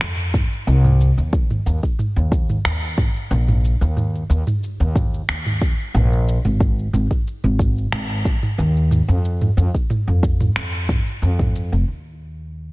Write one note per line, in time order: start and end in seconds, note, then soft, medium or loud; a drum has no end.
0.01 0.43 F2 medium
0.01 finger snap medium
0.01 cabasa soft
0.19 cabasa soft
0.34 kick loud
0.34 mid tom medium
0.34 cabasa medium
0.52 cabasa soft
0.67 1.09 C2 loud
0.67 cabasa medium
0.85 mid tom medium
0.85 cabasa soft
1.01 cabasa medium
1.18 1.58 D#2 medium
1.18 cabasa soft
1.33 kick loud
1.33 cabasa soft
1.50 mid tom medium
1.50 cabasa soft
1.66 1.78 D#2 medium
1.66 cabasa medium
1.83 kick medium
1.83 cabasa soft
1.99 mid tom medium
1.99 cabasa soft
2.16 2.57 D#2 loud
2.16 cabasa soft
2.32 kick loud
2.32 cabasa medium
2.50 mid tom medium
2.50 cabasa soft
2.65 3.07 D#2 medium
2.65 finger snap medium
2.65 cabasa soft
2.83 cabasa soft
2.98 kick loud
2.98 mid tom medium
2.98 cabasa medium
3.16 cabasa soft
3.31 3.73 A#1 loud
3.31 cabasa soft
3.48 mid tom medium
3.48 cabasa soft
3.65 cabasa medium
3.81 4.22 D#2 medium
3.81 cabasa soft
3.97 mid tom medium
3.97 cabasa soft
4.15 cabasa soft
4.30 4.42 D#2 medium
4.30 cabasa medium
4.47 mid tom medium
4.47 cabasa soft
4.63 cabasa soft
4.80 5.21 D#2 loud
4.80 cabasa soft
4.96 kick medium
4.96 mid tom medium
4.96 cabasa medium
5.14 cabasa soft
5.28 5.70 D#2 medium
5.28 finger snap medium
5.28 cabasa soft
5.46 mid tom medium
5.46 cabasa soft
5.61 kick loud
5.61 cabasa medium
5.80 cabasa soft
5.94 6.36 A#1 loud
5.94 mid tom medium
5.94 cabasa soft
6.13 cabasa soft
6.28 cabasa medium
6.45 6.86 G#1 medium
6.45 mid tom medium
6.45 cabasa soft
6.60 kick loud
6.60 cabasa soft
6.79 cabasa soft
6.93 7.06 G#1 medium
6.93 mid tom medium
6.93 cabasa medium
7.11 kick medium
7.11 cabasa soft
7.27 cabasa soft
7.44 7.85 G#1 medium
7.44 mid tom medium
7.44 cabasa soft
7.59 kick loud
7.59 cabasa medium
7.78 cabasa soft
7.92 8.34 G#1 medium
7.92 finger snap medium
7.92 mid tom medium
7.92 cabasa soft
8.11 cabasa soft
8.25 kick medium
8.25 cabasa medium
8.43 mid tom medium
8.43 cabasa soft
8.58 9.00 D#2 loud
8.58 cabasa soft
8.77 cabasa soft
8.91 mid tom medium
8.91 cabasa medium
9.08 9.49 F2 loud
9.08 cabasa soft
9.25 cabasa soft
9.41 mid tom medium
9.41 cabasa soft
9.57 9.69 F2 medium
9.57 cabasa medium
9.75 kick medium
9.75 cabasa soft
9.90 mid tom medium
9.90 cabasa soft
10.07 10.48 F2 loud
10.07 cabasa soft
10.23 kick loud
10.23 cabasa medium
10.41 mid tom medium
10.41 cabasa soft
10.56 10.98 F2 medium
10.56 finger snap medium
10.56 cabasa soft
10.74 cabasa soft
10.89 kick loud
10.89 mid tom medium
10.89 cabasa medium
11.07 cabasa soft
11.22 11.74 F2 medium
11.22 cabasa soft
11.39 kick medium
11.39 mid tom medium
11.39 cabasa soft
11.56 cabasa medium
11.72 11.83 F1 medium
11.72 cabasa soft
11.88 12.73 D#2 medium